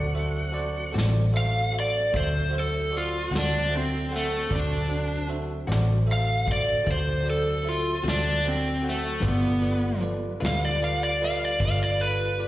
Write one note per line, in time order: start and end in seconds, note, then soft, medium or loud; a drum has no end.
0.00 0.91 D2 medium
0.00 4.47 F#3 medium
0.00 4.46 A3 medium
0.00 4.47 C4 medium
0.00 4.46 D4 medium
0.00 0.92 F#5 medium
0.13 0.44 F#4 medium
0.13 0.45 A4 medium
0.13 0.45 C5 medium
0.13 0.45 E5 medium
0.13 closed hi-hat medium
0.52 0.83 F#4 medium
0.52 0.84 A4 medium
0.52 0.84 C5 medium
0.52 0.84 D5 medium
0.56 closed hi-hat medium
0.92 2.09 A1 medium
0.92 1.19 D3 medium
0.92 1.19 A3 medium
0.92 1.19 C4 medium
0.92 1.23 F#4 medium
0.92 1.18 F#4 medium
0.92 1.23 A4 medium
0.92 1.24 C5 medium
0.92 1.24 D5 medium
0.92 closed hi-hat medium
0.98 snare loud
1.33 1.63 F#4 medium
1.33 1.63 A4 medium
1.33 1.64 C5 medium
1.33 1.64 E5 medium
1.33 closed hi-hat medium
1.37 1.74 F5 medium
1.72 2.02 F#4 medium
1.72 2.03 A4 soft
1.72 2.03 C5 soft
1.72 2.03 E5 medium
1.72 closed hi-hat medium
1.80 2.15 D5 medium
2.13 3.28 D2 medium
2.13 2.43 F#4 medium
2.13 2.43 A4 soft
2.13 2.43 C5 soft
2.13 2.53 C5 medium
2.13 2.43 E5 medium
2.13 kick medium
2.13 closed hi-hat medium
2.50 2.81 F#4 medium
2.50 2.81 A4 soft
2.50 2.82 C5 soft
2.50 2.82 E5 medium
2.50 closed hi-hat medium
2.59 2.94 A4 medium
2.90 3.21 F#4 medium
2.90 3.21 A4 soft
2.90 3.22 C5 medium
2.90 3.22 D5 medium
2.90 closed hi-hat medium
2.97 3.33 F4 medium
3.30 4.46 D2 medium
3.30 3.56 D3 medium
3.30 3.56 A3 medium
3.30 3.56 C4 medium
3.30 3.61 F#4 medium
3.30 3.56 F#4 medium
3.30 3.61 A4 soft
3.30 3.61 C5 medium
3.30 3.61 F#5 medium
3.30 closed hi-hat medium
3.35 3.73 D4 medium
3.35 snare loud
3.69 4.00 F#4 medium
3.69 4.00 A4 soft
3.69 4.01 C5 medium
3.69 4.01 E5 medium
3.69 closed hi-hat medium
3.77 4.12 C4 medium
4.11 4.40 F#4 soft
4.11 4.40 A4 soft
4.11 4.41 C5 soft
4.11 4.41 F#5 medium
4.11 closed hi-hat medium
4.16 4.51 A3 medium
4.50 5.65 D2 loud
4.50 9.20 D3 medium
4.50 9.20 F#3 medium
4.50 9.21 A3 medium
4.50 9.20 C4 medium
4.50 4.79 F#4 medium
4.50 4.80 A4 medium
4.50 4.80 C5 medium
4.50 4.80 D5 medium
4.50 kick loud
4.50 closed hi-hat medium
4.55 5.29 D4 medium
4.88 5.18 F#4 soft
4.88 5.18 A4 soft
4.88 5.19 C5 medium
4.88 5.19 D5 medium
4.88 closed hi-hat medium
5.28 5.58 F#4 medium
5.28 5.58 A4 soft
5.28 5.58 C5 soft
5.28 5.59 E5 medium
5.28 closed hi-hat medium
5.67 6.83 A1 medium
5.67 5.93 D3 medium
5.67 5.92 A3 medium
5.67 5.92 C4 medium
5.67 5.91 F#4 medium
5.67 5.98 F#4 medium
5.67 5.97 A4 medium
5.67 5.98 C5 medium
5.67 5.98 D5 medium
5.67 closed hi-hat medium
5.72 snare loud
6.06 6.37 F#4 soft
6.06 6.37 A4 medium
6.06 6.37 C5 soft
6.06 6.37 E5 medium
6.06 closed hi-hat medium
6.12 6.48 F5 medium
6.46 6.76 F#4 soft
6.46 6.76 A4 soft
6.46 6.77 C5 soft
6.46 6.77 E5 medium
6.46 kick medium
6.46 closed hi-hat medium
6.51 6.88 D5 medium
6.51 snare soft
6.84 8.01 D2 medium
6.84 7.15 F#4 medium
6.84 7.15 A4 soft
6.84 7.15 C5 soft
6.84 7.16 D5 medium
6.84 kick medium
6.84 closed hi-hat medium
6.91 7.27 C5 medium
7.23 7.54 F#4 medium
7.23 7.55 A4 soft
7.23 7.55 C5 soft
7.23 7.56 D5 medium
7.23 closed hi-hat medium
7.30 7.66 A4 medium
7.63 7.94 F#4 soft
7.63 7.94 A4 soft
7.63 7.94 C5 soft
7.63 7.95 E5 medium
7.63 closed hi-hat medium
7.69 8.05 F4 medium
8.04 9.19 D2 medium
8.04 8.29 D3 medium
8.04 8.29 A3 medium
8.04 8.28 C4 medium
8.04 8.28 F#4 medium
8.04 8.34 F#4 soft
8.04 8.35 A4 soft
8.04 8.35 C5 soft
8.04 8.35 E5 medium
8.04 closed hi-hat medium
8.08 8.45 D4 medium
8.08 snare loud
8.44 8.74 F#4 medium
8.44 8.74 A4 soft
8.44 8.74 C5 soft
8.44 8.75 D5 medium
8.44 closed hi-hat medium
8.48 8.85 C4 medium
8.82 9.13 F#4 medium
8.82 9.13 A4 medium
8.82 9.13 C5 medium
8.82 9.14 F#5 medium
8.82 closed hi-hat medium
8.89 9.25 A3 medium
9.20 10.38 G1 medium
9.20 9.46 G3 medium
9.20 12.48 G3 medium
9.20 12.48 D4 medium
9.20 9.46 D4 medium
9.20 12.48 F4 medium
9.20 9.46 F4 medium
9.20 9.52 F4 medium
9.20 9.52 A4 medium
9.20 12.48 B4 medium
9.20 9.46 B4 medium
9.20 9.53 B4 medium
9.20 9.53 D5 medium
9.20 kick loud
9.20 closed hi-hat medium
9.28 10.03 B3 medium
9.61 9.92 F4 medium
9.61 9.92 A4 soft
9.61 9.92 B4 soft
9.61 9.92 D5 medium
9.61 closed hi-hat medium
10.01 10.31 F4 medium
10.01 10.32 A4 soft
10.01 10.32 B4 medium
10.01 10.32 D5 medium
10.01 closed hi-hat medium
10.40 11.57 D2 medium
10.40 10.66 G3 medium
10.40 10.65 D4 soft
10.40 10.65 F4 medium
10.40 10.71 F4 medium
10.40 10.71 A4 soft
10.40 10.65 B4 medium
10.40 10.71 B4 soft
10.40 10.71 E5 medium
10.40 closed hi-hat medium
10.45 10.63 F5 medium
10.45 snare loud
10.65 10.82 D5 medium
10.81 11.11 F4 medium
10.81 11.11 A4 soft
10.81 11.11 B4 soft
10.81 11.12 D5 medium
10.81 11.02 F5 medium
10.81 closed hi-hat medium
11.03 11.21 D5 medium
11.21 11.51 F4 medium
11.21 11.51 A4 soft
11.21 11.51 B4 medium
11.21 11.52 D5 medium
11.21 11.42 F5 loud
11.21 snare soft
11.21 closed hi-hat medium
11.45 11.62 D5 medium
11.60 12.48 G1 medium
11.60 11.90 F4 soft
11.60 11.90 A4 soft
11.60 11.90 B4 soft
11.60 11.90 D5 medium
11.60 kick medium
11.60 closed hi-hat medium
11.65 11.82 F5 medium
11.83 12.01 D5 medium
11.99 12.30 F4 soft
11.99 12.30 A4 soft
11.99 12.48 B4 medium
11.99 12.30 B4 soft
11.99 12.31 F5 soft
11.99 closed hi-hat medium
12.38 12.48 F4 medium
12.38 12.48 A4 soft
12.38 12.48 B4 soft
12.38 12.48 D5 medium
12.38 closed hi-hat soft